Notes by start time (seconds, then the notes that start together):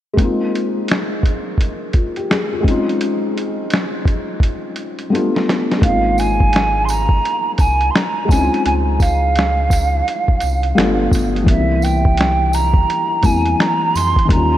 0.13 G#3 A#3
0.17 C4 D#4, kick, closed hi-hat
0.24 F4
0.55 closed hi-hat
0.88 finger snap, snare, closed hi-hat
1.23 kick, closed hi-hat
1.58 kick, closed hi-hat
1.93 F4, kick, closed hi-hat
2.16 G4, closed hi-hat
2.30 G#4, finger snap, snare, closed hi-hat
2.53 F4
2.61 G#3 C4, kick
2.66 C#4 D#4, closed hi-hat
2.71 F4
2.89 closed hi-hat
3.01 closed hi-hat
3.38 closed hi-hat
3.70 finger snap, snare, closed hi-hat
4.05 kick, closed hi-hat
4.40 kick, closed hi-hat
4.76 closed hi-hat
4.99 closed hi-hat
5.10 G3 A3 B3 D4
5.15 F4, closed hi-hat
5.36 snare
5.49 snare, closed hi-hat
5.71 snare, closed hi-hat
5.78 G#3 A#3, kick
5.83 G#1 C4 D#4 F5, closed hi-hat
5.89 F4
6.18 G#5, closed hi-hat, tambourine
6.40 kick
6.53 finger snap, snare, closed hi-hat
6.85 C6, tambourine
6.90 A#5, closed hi-hat
7.09 kick
7.25 closed hi-hat
7.55 A#5, kick, closed hi-hat
7.59 C2 G#5, tambourine
7.81 closed hi-hat
7.91 C6
7.95 A#5, finger snap, snare, closed hi-hat
8.25 G#3 C4, kick
8.30 C#2 C#4 D#4 G#5, closed hi-hat, tambourine
8.35 E4
8.42 F4
8.54 closed hi-hat
8.66 C#2 G#5, closed hi-hat
9.00 F5, kick, closed hi-hat, tambourine
9.36 finger snap, snare, closed hi-hat
9.70 kick, closed hi-hat, tambourine
10.08 closed hi-hat
10.28 kick
10.40 C2, closed hi-hat, tambourine
10.63 closed hi-hat
10.75 G1 G3 A3 B3 D4, finger snap, snare
10.80 F4, closed hi-hat
11.12 G1, kick, closed hi-hat, tambourine
11.36 closed hi-hat
11.43 E3 G3, kick
11.47 C2 A#3 C4 E5, closed hi-hat
11.53 D#4
11.60 E4
11.82 G5, closed hi-hat, tambourine
12.05 kick
12.17 finger snap, snare, closed hi-hat
12.53 A#5, closed hi-hat, tambourine
12.74 kick
12.90 closed hi-hat
13.22 E2 E3 G3 A#3 C4 G#5, kick, closed hi-hat, tambourine
13.27 E4
13.46 closed hi-hat
13.60 A#5, finger snap, snare, closed hi-hat
13.95 F2 C6, closed hi-hat, tambourine
14.16 kick, closed hi-hat
14.25 D#3 G3, kick
14.30 D#2 A#3 C#4 A#5, closed hi-hat
14.35 F4